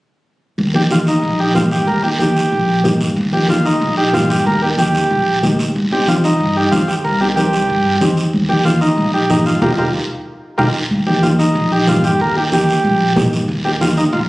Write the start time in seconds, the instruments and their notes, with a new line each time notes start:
0.58 upright bass D#2, long guiro
0.74 upright piano A#3 D#4 G4, transistor combo organ G4, high conga
0.90 upright piano A#3 D#4 G4, transistor combo organ F4, high conga, short guiro
1.07 transistor combo organ D#4, short guiro
1.22 upright bass A#1, long guiro
1.40 transistor combo organ G4
1.54 upright bass G2, upright piano A#3 D#4 G4, transistor combo organ F4, high conga, short guiro
1.71 transistor combo organ G4, short guiro
1.87 upright bass D#2, transistor combo organ A#4, long guiro
2.03 upright piano A#3 D#4 G4, transistor combo organ G4
2.19 upright piano A#3 D#4 G4, transistor combo organ G4, high conga, short guiro
2.36 short guiro
2.52 upright bass A#1, long guiro
2.84 upright bass G2, upright piano A#3 D#4 G4, high conga, short guiro
3.01 short guiro
3.16 upright bass D#2, long guiro
3.32 upright piano A#3 D#4 F4, transistor combo organ G4, high conga
3.48 upright piano A#3 D#4 G4, transistor combo organ F4, high conga, short guiro
3.65 transistor combo organ D#4, short guiro
3.81 upright bass A#1, long guiro
3.97 transistor combo organ G4
4.13 upright bass G2, upright piano A#3 D#4 G4, transistor combo organ F4, high conga, short guiro
4.30 transistor combo organ G4, short guiro
4.46 upright bass D#2, transistor combo organ A#4, long guiro
4.62 upright piano A#3 D#4 A#4, transistor combo organ G4
4.78 upright piano A#3 D#4 G4, transistor combo organ G4, high conga, short guiro
4.95 short guiro
5.11 upright bass A#1, long guiro
5.43 upright bass D2, upright piano A#3 D#4 G4, high conga, short guiro
5.59 short guiro
5.76 upright bass C2, long guiro
5.92 upright piano C4 D#4 G4, transistor combo organ G4
6.08 upright piano C4 D#4 F4, transistor combo organ F4, high conga, short guiro
6.24 transistor combo organ D#4, short guiro
6.40 upright bass G2, long guiro
6.56 transistor combo organ G4
6.72 upright bass D#2, upright piano C4 D#4 G4, transistor combo organ F4, high conga, short guiro
6.88 transistor combo organ G4, short guiro
7.04 upright bass C2, transistor combo organ A#4, long guiro
7.21 upright piano C4 D#4 G4, transistor combo organ G4
7.36 upright piano C4 D#4 A#4, transistor combo organ G4, high conga, short guiro
7.53 short guiro
7.69 upright bass G2, long guiro
8.01 upright bass D#2, upright piano C4 D#4 G4, high conga, short guiro
8.17 short guiro
8.33 upright bass D#2, long guiro
8.49 upright piano A#3 D#4 G4, transistor combo organ G4, high conga
8.65 upright piano A#3 D#4 G4, transistor combo organ F4, high conga, short guiro
8.81 transistor combo organ D#4, short guiro
8.97 upright bass A#1, long guiro
9.14 transistor combo organ G4
9.30 upright bass G2, upright piano A#3 D#4 G4, transistor combo organ D#4, high conga, short guiro
9.46 transistor combo organ F4, short guiro
9.62 upright bass D#2, upright piano D#4 F4 G4, transistor combo organ F4 G4 A#4, low conga, long guiro
9.78 upright bass D#2, upright piano D#4 F4 G4, transistor combo organ F4 G4 A#4, low conga, long guiro
10.58 upright bass D#2, upright piano D#4 F4 G4, transistor combo organ F4 G4 A#4, low conga, long guiro
10.90 upright bass D#2, long guiro
11.07 upright piano A#3 D#4 G4, transistor combo organ G4, high conga
11.23 upright piano A#3 D#4 G4, transistor combo organ F4, high conga, short guiro
11.39 transistor combo organ D#4, short guiro
11.55 upright bass A#1, long guiro
11.72 transistor combo organ G4
11.87 upright bass G2, upright piano A#3 D#4 G4, transistor combo organ F4, high conga, short guiro
12.04 transistor combo organ G4, short guiro
12.19 upright bass D#2, transistor combo organ A#4, long guiro
12.35 upright piano A#3 D#4 G4, transistor combo organ G4
12.51 upright piano A#3 D#4 G4, transistor combo organ G4, high conga, short guiro
12.69 short guiro
12.84 upright bass A#1, long guiro
13.16 upright bass G2, upright piano A#3 D#4 G4, high conga, low conga, short guiro
13.33 short guiro
13.48 upright bass D#2, long guiro
13.65 upright piano A#3 D#4 G4, transistor combo organ G4
13.80 upright piano A#3 D#4 G4, transistor combo organ F4, high conga, short guiro
13.97 transistor combo organ D#4, short guiro
14.12 upright bass A#1, transistor combo organ F4, long guiro